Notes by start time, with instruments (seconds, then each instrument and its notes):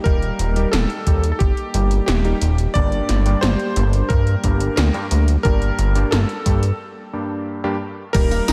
Already playing: analog synth pad G3 A#3 D#4 G4
0.04 analog synth bass D#1, electric grand piano G3 A#3 D#4 G4 A#4, kick, closed hi-hat
0.22 closed hi-hat
0.39 analog synth bass D#1, closed hi-hat
0.56 electric grand piano G3 A#3 D#4 G4, closed hi-hat
0.72 analog synth bass D#1, electric grand piano A4, snare, closed hi-hat
0.90 closed hi-hat
1.07 analog synth bass D#2, electric grand piano G3 A#3 D#4 G4, kick, closed hi-hat
1.24 closed hi-hat
1.32 electric grand piano A4
1.39 analog synth bass G1, electric grand piano G4, kick, closed hi-hat
1.57 closed hi-hat
1.74 analog synth bass G1, electric grand piano G3 A#3 D#4 G4, closed hi-hat
1.91 closed hi-hat
2.06 analog synth bass D#1, electric grand piano G4, snare, closed hi-hat
2.25 electric grand piano G3 A#3 D#4 G4, closed hi-hat
2.42 analog synth bass D#1, closed hi-hat
2.58 closed hi-hat
2.74 analog synth bass G1, electric grand piano G2 G3 A#3 D4 G4 D5, analog synth pad G3 A#3 D4 G4, kick, closed hi-hat
2.92 closed hi-hat
3.09 analog synth bass G1, snare, closed hi-hat
3.26 electric grand piano G2 G3 A#3 D4 G4, closed hi-hat
3.41 analog synth bass G1, electric grand piano C5, snare, closed hi-hat
3.59 closed hi-hat
3.76 analog synth bass G1, electric grand piano G2 G3 A#3 D4 G4, closed hi-hat
3.93 closed hi-hat
4.09 analog synth bass G2, electric grand piano A#4, kick, closed hi-hat
4.27 closed hi-hat
4.44 analog synth bass G1, electric grand piano G2 G3 A#3 D4 G4, kick, closed hi-hat
4.60 closed hi-hat
4.76 analog synth bass D2, electric grand piano A#4, snare, closed hi-hat
4.94 electric grand piano G2 G3 A#3 D4 G4, closed hi-hat
5.11 analog synth bass D2, closed hi-hat
5.28 closed hi-hat
5.43 analog synth bass G1, electric grand piano G2 G3 A#3 D4 G4 A#4, kick, closed hi-hat
5.62 closed hi-hat
5.79 analog synth bass G1, closed hi-hat
5.95 electric grand piano G2 G3 A#3 D4 G4, closed hi-hat
6.11 analog synth bass G1, electric grand piano A4, snare, closed hi-hat
6.29 closed hi-hat
6.46 electric grand piano G2 G3 A#3 D4 G4, analog synth bass G2, kick, closed hi-hat
6.63 closed hi-hat
7.13 electric grand piano G2 G3 A#3 D4 G4
7.64 electric grand piano G2 G3 A#3 D4 G4
8.13 analog synth bass D#1, electric grand piano G3 A#3 D#4 G4 A#4, synth arpeggio sound G3, analog synth pad A#3 D#5 G5 D#6, kick, closed hi-hat, crash, tambourine
8.31 synth arpeggio sound A#3, closed hi-hat, tambourine
8.48 analog synth bass D#1, synth arpeggio sound D#4, snare, open hi-hat, tambourine